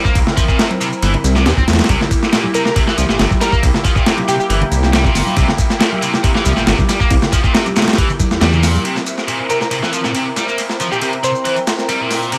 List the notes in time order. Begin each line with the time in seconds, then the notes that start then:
Already playing: C4 E4 A#4
0.05 A#3, kick, shaker
0.15 C2, kick, ride, shaker
0.27 snare, low conga
0.37 F3, kick, ride, shaker
0.48 A#2, kick, shaker
0.59 C3, snare, ride, shaker
0.70 ride, high conga
0.81 C3, ride, shaker
0.93 shaker
1.02 G1 E3, ride, shaker
1.14 ride, low conga
1.24 C2, ride, shaker
1.36 C3, snare, shaker
1.46 E2 A#2, snare, ride, shaker
1.57 A#1 C4, kick, shaker
1.67 E2, snare, ride, shaker
1.73 snare, ride
1.79 snare, ride, high conga, shaker
1.84 snare, ride
1.89 C2 C3 A#3 G4, kick, ride, shaker
2.01 snare, low conga
2.11 kick, ride, shaker
2.23 snare, shaker
2.33 A#2, snare, ride, shaker
2.44 high conga
2.54 C3 A#4, ride, shaker
2.65 A#4, snare, shaker
2.76 C3, kick, ride, shaker
2.87 E3, snare
2.98 C2 F3, ride, shaker
3.09 G1 A#2, snare, shaker
3.19 G1 C3, snare, ride, shaker
3.30 kick, high conga, shaker
3.41 G3 A#4, snare, ride, shaker
3.52 A#3, kick, shaker
3.63 C2, kick, ride, shaker
3.74 snare, low conga
3.85 F3, kick, ride, shaker
3.96 A#2, kick, shaker
4.06 C3, snare, ride, shaker
4.17 ride, high conga
4.28 C3 G4, ride, shaker
4.40 G4, shaker
4.50 G1 E3, ride, shaker
4.61 ride, low conga
4.72 C2, ride, shaker
4.83 snare, shaker
4.93 G3, snare, ride, shaker
5.05 A#2, kick, shaker
5.15 G1, snare, open hi-hat, shaker
5.26 high conga, shaker
5.37 C2 C3, kick, ride, shaker
5.48 snare, low conga
5.58 kick, ride, shaker
5.70 snare, shaker
5.80 A#2, snare, ride, shaker
5.92 high conga
6.02 C3, ride, shaker
6.14 snare, shaker
6.24 C3, kick, ride, shaker
6.35 E3, snare
6.46 C2 F3, ride, shaker
6.57 G1 A#2, snare, shaker
6.67 G1 C3, snare, ride, shaker
6.78 kick, high conga, shaker
6.89 G3, snare, ride, shaker
7.00 A#3, kick, shaker
7.10 C2, kick, ride, shaker
7.22 snare, low conga, shaker
7.32 F3, kick, ride, shaker
7.44 A#2, kick, shaker
7.54 C3, snare, ride, shaker
7.66 ride, high conga, shaker
7.76 C3, snare, ride, shaker
7.82 snare, ride
7.88 snare, ride, shaker
7.93 snare, ride
7.98 E3, kick, ride, shaker
8.10 low conga, shaker
8.20 kick, ride, high conga, shaker
8.31 E2, snare, shaker
8.41 E2 G3, snare, ride, shaker
8.53 A#2, low conga, shaker
8.63 snare, open hi-hat, shaker
8.75 high conga, shaker
8.85 C3 C4 E4 A#4, ride, shaker
8.96 snare, shaker
9.06 ride, shaker
9.18 snare, shaker
9.28 A#2, ride, shaker
9.50 C3 A#4, ride, shaker
9.61 A#4, snare, shaker
9.71 C3, ride, shaker
9.83 E3, snare, shaker
9.93 F3, ride, shaker
10.04 A#2, snare, shaker
10.15 C3, ride, shaker
10.36 G3, snare, ride, shaker
10.48 A#3, shaker
10.58 ride, shaker
10.69 snare, shaker
10.80 F3, ride, shaker
10.91 A#2 G4, shaker
11.02 C3 G4, ride, shaker
11.13 ride
11.23 C3 C5, ride, shaker
11.35 shaker
11.45 E3, ride, shaker
11.56 ride, shaker
11.67 snare, ride, shaker
11.79 snare, shaker
11.89 G3, ride, shaker
12.00 A#2
12.11 snare, open hi-hat, shaker
12.22 shaker
12.32 C3, ride, shaker